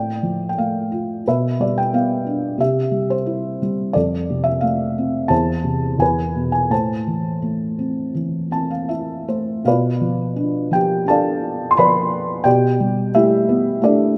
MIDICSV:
0, 0, Header, 1, 2, 480
1, 0, Start_track
1, 0, Tempo, 680272
1, 887, Time_signature, 4, 2, 24, 8
1, 4238, Tempo, 717703
1, 5198, Tempo, 741656
1, 6638, Tempo, 703400
1, 8078, Tempo, 681818
1, 9767, End_track
2, 0, Start_track
2, 0, Title_t, "Felt piano"
2, 0, Program_c, 0, 0
2, 0, Note_on_c, 0, 45, 34
2, 0, Note_on_c, 0, 74, 37
2, 0, Note_on_c, 0, 79, 51
2, 57, Control_c, 0, 64, 127
2, 160, Note_on_c, 0, 53, 29
2, 337, Note_off_c, 0, 79, 0
2, 348, Note_on_c, 0, 79, 37
2, 400, Note_off_c, 0, 79, 0
2, 409, Note_on_c, 0, 57, 33
2, 411, Note_on_c, 0, 77, 50
2, 647, Note_on_c, 0, 65, 32
2, 856, Note_off_c, 0, 45, 0
2, 862, Note_off_c, 0, 74, 0
2, 864, Note_off_c, 0, 53, 0
2, 874, Note_off_c, 0, 57, 0
2, 879, Note_off_c, 0, 65, 0
2, 896, Control_c, 0, 64, 0
2, 898, Note_on_c, 0, 47, 39
2, 900, Note_on_c, 0, 71, 37
2, 904, Note_off_c, 0, 77, 0
2, 906, Note_on_c, 0, 76, 53
2, 1026, Control_c, 0, 64, 127
2, 1125, Note_on_c, 0, 55, 32
2, 1135, Note_on_c, 0, 74, 51
2, 1141, Note_off_c, 0, 76, 0
2, 1251, Note_off_c, 0, 74, 0
2, 1254, Note_on_c, 0, 79, 54
2, 1362, Note_on_c, 0, 59, 32
2, 1369, Note_off_c, 0, 79, 0
2, 1369, Note_on_c, 0, 77, 54
2, 1599, Note_on_c, 0, 62, 35
2, 1809, Note_off_c, 0, 47, 0
2, 1810, Note_off_c, 0, 71, 0
2, 1811, Note_off_c, 0, 55, 0
2, 1818, Note_off_c, 0, 59, 0
2, 1820, Note_on_c, 0, 48, 41
2, 1826, Note_off_c, 0, 62, 0
2, 1835, Note_on_c, 0, 67, 40
2, 1838, Note_on_c, 0, 76, 57
2, 1839, Control_c, 0, 64, 0
2, 1850, Note_off_c, 0, 77, 0
2, 1956, Control_c, 0, 64, 127
2, 2054, Note_on_c, 0, 55, 35
2, 2189, Note_on_c, 0, 72, 48
2, 2203, Note_off_c, 0, 76, 0
2, 2302, Note_on_c, 0, 64, 37
2, 2525, Note_off_c, 0, 72, 0
2, 2544, Note_off_c, 0, 55, 0
2, 2554, Note_on_c, 0, 55, 37
2, 2758, Note_off_c, 0, 48, 0
2, 2765, Note_off_c, 0, 67, 0
2, 2773, Note_off_c, 0, 64, 0
2, 2776, Note_on_c, 0, 74, 60
2, 2786, Note_off_c, 0, 55, 0
2, 2787, Note_on_c, 0, 69, 42
2, 2792, Note_on_c, 0, 41, 46
2, 2799, Control_c, 0, 64, 0
2, 2912, Control_c, 0, 64, 127
2, 3033, Note_on_c, 0, 48, 37
2, 3130, Note_on_c, 0, 76, 62
2, 3155, Note_off_c, 0, 74, 0
2, 3251, Note_on_c, 0, 77, 60
2, 3262, Note_on_c, 0, 57, 39
2, 3265, Note_off_c, 0, 76, 0
2, 3515, Note_on_c, 0, 60, 36
2, 3721, Note_off_c, 0, 69, 0
2, 3723, Note_off_c, 0, 41, 0
2, 3727, Note_on_c, 0, 81, 66
2, 3730, Note_off_c, 0, 48, 0
2, 3731, Note_off_c, 0, 57, 0
2, 3739, Note_on_c, 0, 40, 45
2, 3740, Note_on_c, 0, 72, 45
2, 3746, Note_off_c, 0, 60, 0
2, 3755, Note_off_c, 0, 77, 0
2, 3760, Control_c, 0, 64, 0
2, 3878, Control_c, 0, 64, 127
2, 3980, Note_on_c, 0, 48, 36
2, 4198, Note_off_c, 0, 81, 0
2, 4205, Note_off_c, 0, 72, 0
2, 4210, Note_off_c, 0, 40, 0
2, 4221, Note_on_c, 0, 40, 41
2, 4224, Note_off_c, 0, 48, 0
2, 4232, Note_on_c, 0, 80, 58
2, 4247, Control_c, 0, 64, 0
2, 4248, Note_on_c, 0, 71, 41
2, 4346, Control_c, 0, 64, 127
2, 4470, Note_on_c, 0, 47, 31
2, 4566, Note_off_c, 0, 80, 0
2, 4583, Note_on_c, 0, 80, 56
2, 4692, Note_off_c, 0, 40, 0
2, 4692, Note_off_c, 0, 71, 0
2, 4703, Note_on_c, 0, 45, 38
2, 4705, Note_off_c, 0, 47, 0
2, 4710, Note_on_c, 0, 81, 51
2, 4712, Note_off_c, 0, 80, 0
2, 4721, Note_on_c, 0, 72, 37
2, 4722, Control_c, 0, 64, 0
2, 4841, Control_c, 0, 64, 127
2, 4949, Note_on_c, 0, 52, 31
2, 5185, Note_on_c, 0, 57, 31
2, 5422, Note_on_c, 0, 60, 29
2, 5644, Note_off_c, 0, 52, 0
2, 5654, Note_on_c, 0, 52, 28
2, 5881, Note_off_c, 0, 60, 0
2, 5887, Note_off_c, 0, 81, 0
2, 5890, Note_on_c, 0, 60, 29
2, 5897, Note_on_c, 0, 81, 37
2, 6016, Note_on_c, 0, 77, 32
2, 6019, Note_off_c, 0, 81, 0
2, 6128, Note_off_c, 0, 57, 0
2, 6135, Note_on_c, 0, 64, 28
2, 6135, Note_on_c, 0, 76, 33
2, 6138, Note_off_c, 0, 72, 0
2, 6141, Note_off_c, 0, 77, 0
2, 6374, Note_off_c, 0, 76, 0
2, 6388, Note_on_c, 0, 57, 26
2, 6391, Note_on_c, 0, 72, 34
2, 6603, Note_off_c, 0, 52, 0
2, 6605, Note_off_c, 0, 60, 0
2, 6607, Note_off_c, 0, 45, 0
2, 6611, Note_off_c, 0, 64, 0
2, 6615, Note_off_c, 0, 72, 0
2, 6623, Note_off_c, 0, 57, 0
2, 6625, Note_on_c, 0, 47, 48
2, 6632, Note_on_c, 0, 77, 58
2, 6645, Note_on_c, 0, 71, 42
2, 6645, Note_on_c, 0, 74, 42
2, 6647, Note_on_c, 0, 65, 44
2, 6648, Control_c, 0, 64, 0
2, 6783, Control_c, 0, 64, 127
2, 6872, Note_on_c, 0, 53, 36
2, 7113, Note_on_c, 0, 62, 41
2, 7338, Note_off_c, 0, 74, 0
2, 7339, Note_off_c, 0, 65, 0
2, 7339, Note_off_c, 0, 71, 0
2, 7341, Note_off_c, 0, 53, 0
2, 7351, Note_on_c, 0, 53, 42
2, 7363, Note_on_c, 0, 79, 68
2, 7377, Note_on_c, 0, 67, 53
2, 7381, Note_off_c, 0, 77, 0
2, 7582, Note_off_c, 0, 62, 0
2, 7589, Note_off_c, 0, 79, 0
2, 7592, Note_on_c, 0, 62, 42
2, 7597, Note_off_c, 0, 67, 0
2, 7603, Note_on_c, 0, 81, 71
2, 7612, Note_on_c, 0, 69, 50
2, 7615, Note_on_c, 0, 74, 53
2, 7615, Note_on_c, 0, 77, 52
2, 8010, Note_off_c, 0, 69, 0
2, 8011, Note_off_c, 0, 74, 0
2, 8011, Note_off_c, 0, 77, 0
2, 8031, Note_on_c, 0, 84, 57
2, 8045, Note_off_c, 0, 81, 0
2, 8070, Note_off_c, 0, 53, 0
2, 8075, Note_on_c, 0, 83, 76
2, 8078, Note_off_c, 0, 84, 0
2, 8081, Note_on_c, 0, 53, 42
2, 8086, Note_on_c, 0, 74, 57
2, 8090, Note_on_c, 0, 71, 55
2, 8520, Note_off_c, 0, 47, 0
2, 8520, Note_off_c, 0, 62, 0
2, 8531, Note_off_c, 0, 74, 0
2, 8532, Note_off_c, 0, 71, 0
2, 8542, Note_off_c, 0, 53, 0
2, 8543, Note_on_c, 0, 79, 76
2, 8551, Note_on_c, 0, 47, 55
2, 8552, Note_on_c, 0, 67, 56
2, 8553, Note_on_c, 0, 74, 53
2, 8566, Control_c, 0, 64, 0
2, 8568, Note_off_c, 0, 83, 0
2, 8690, Control_c, 0, 64, 127
2, 8799, Note_on_c, 0, 55, 47
2, 9007, Note_off_c, 0, 67, 0
2, 9008, Note_off_c, 0, 74, 0
2, 9042, Note_on_c, 0, 76, 71
2, 9044, Note_on_c, 0, 57, 50
2, 9046, Note_off_c, 0, 79, 0
2, 9049, Note_on_c, 0, 67, 54
2, 9053, Note_on_c, 0, 64, 56
2, 9283, Note_on_c, 0, 59, 48
2, 9495, Note_off_c, 0, 76, 0
2, 9498, Note_off_c, 0, 67, 0
2, 9500, Note_off_c, 0, 64, 0
2, 9504, Note_off_c, 0, 57, 0
2, 9514, Note_on_c, 0, 57, 52
2, 9528, Note_on_c, 0, 74, 65
2, 9530, Note_on_c, 0, 69, 48
2, 9531, Note_on_c, 0, 62, 49
2, 9532, Note_on_c, 0, 67, 46
2, 9733, Note_off_c, 0, 55, 0
2, 9767, Note_off_c, 0, 47, 0
2, 9767, Note_off_c, 0, 57, 0
2, 9767, Note_off_c, 0, 59, 0
2, 9767, Note_off_c, 0, 62, 0
2, 9767, Note_off_c, 0, 67, 0
2, 9767, Note_off_c, 0, 69, 0
2, 9767, Note_off_c, 0, 74, 0
2, 9767, End_track
0, 0, End_of_file